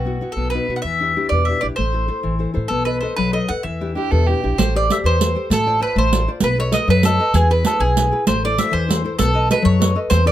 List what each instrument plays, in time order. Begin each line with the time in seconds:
Already playing: upright bass B1, nylon-string guitar B2, mandolin F#4
0.05 nylon-string guitar B3 E4 F#4
0.21 nylon-string guitar B3 E4 F#4
0.32 upright bass B1, mandolin A4
0.37 nylon-string guitar B2
0.50 mandolin B4
0.54 nylon-string guitar B3 D#4 F#4
0.69 upright bass B2, nylon-string guitar B3 D#4 F#4
0.76 mandolin F#5
0.82 upright bass E2, nylon-string guitar E3, mandolin E5
1.00 nylon-string guitar D4 E4 G4
1.16 nylon-string guitar D4 E4 G4
1.29 upright bass E2, nylon-string guitar B2, mandolin D5
1.45 nylon-string guitar D4, mandolin E5
1.49 nylon-string guitar E4 G4
1.61 upright bass A#1, nylon-string guitar D4 E4 G4, mandolin D5
1.76 upright bass A1, nylon-string guitar A3, mandolin C5
1.93 nylon-string guitar E4 A4 C5
2.08 nylon-string guitar E4 A4 C5
2.23 upright bass A1, nylon-string guitar E3
2.39 nylon-string guitar E4 A4 C5
2.54 upright bass A2, nylon-string guitar E4 A4 C5
2.68 upright bass B1, nylon-string guitar B3, mandolin A4
2.85 nylon-string guitar A4 B4 D#5, mandolin B4
3.01 nylon-string guitar A4 B4 D#5, mandolin C5
3.16 upright bass B1, nylon-string guitar F#3, mandolin B4
3.33 nylon-string guitar A4 B4 D#5, mandolin D#5
3.49 upright bass D#2, nylon-string guitar A4 B4 D#5, mandolin F#5
3.63 upright bass E2, nylon-string guitar E3, mandolin E5
3.81 nylon-string guitar D4 E4 G4
3.95 nylon-string guitar D4 E4 G4, violin G4
4.11 upright bass E2, nylon-string guitar B2, violin A4
4.27 nylon-string guitar D4 E4 G4, violin G4
4.43 upright bass A#1, nylon-string guitar D4 E4 G4
4.58 upright bass A1, nylon-string guitar A3, mandolin C5, riq
4.75 nylon-string guitar G4 A4 C5, mandolin D5
4.90 nylon-string guitar G4 A4 C5, mandolin E5, riq
5.04 upright bass E2, nylon-string guitar E3, mandolin C5
5.21 nylon-string guitar G4 A4 C5, riq
5.35 nylon-string guitar G4 A4 C5
5.50 upright bass A1, nylon-string guitar A3, mandolin A4, riq
5.66 nylon-string guitar F4 C5 D5
5.80 nylon-string guitar F4 C5 D5, mandolin B4
5.96 upright bass A1, nylon-string guitar A3, mandolin C5
6.12 nylon-string guitar F4 C5 D5, riq
6.28 nylon-string guitar F4 C5 D5
6.40 upright bass B1, nylon-string guitar B3, mandolin B4, riq
6.58 nylon-string guitar A4 B4 D#5, mandolin C#5
6.72 nylon-string guitar A4 B4 D#5, mandolin D#5, riq
6.88 upright bass F#2, nylon-string guitar F#3, mandolin B4
7.03 nylon-string guitar A4 B4 D#5, mandolin A4, riq
7.20 nylon-string guitar A4 B4 D#5
7.34 upright bass E2, nylon-string guitar E3, mandolin G#4, riq
7.50 nylon-string guitar E4 G#4 B4, mandolin B4
7.65 nylon-string guitar E4 G#4 B4, mandolin A4, riq
7.80 upright bass B1, nylon-string guitar B2, mandolin G#4
7.96 nylon-string guitar E4 G#4 B4, riq
8.11 nylon-string guitar E4 G#4 B4
8.27 upright bass A1, nylon-string guitar A3, mandolin C5, riq
8.44 nylon-string guitar E4 A4 C5, mandolin D5
8.58 nylon-string guitar E4 A4 C5, mandolin E5, riq
8.71 upright bass E2, nylon-string guitar E3, mandolin C5
8.88 nylon-string guitar E4 A4 C5, riq
9.04 nylon-string guitar E4 A4 C5
9.19 upright bass B1, nylon-string guitar B3, mandolin A4, riq
9.34 nylon-string guitar A4 B4 D#5
9.49 nylon-string guitar A4 B4 D#5, mandolin B4, riq
9.62 upright bass F#2, nylon-string guitar F#3, mandolin C#5
9.80 nylon-string guitar A4 B4 D#5, riq
9.95 nylon-string guitar A4 B4 D#5
10.10 upright bass E2, nylon-string guitar E3, mandolin C5, riq
10.25 nylon-string guitar C4 E4 A4, mandolin D5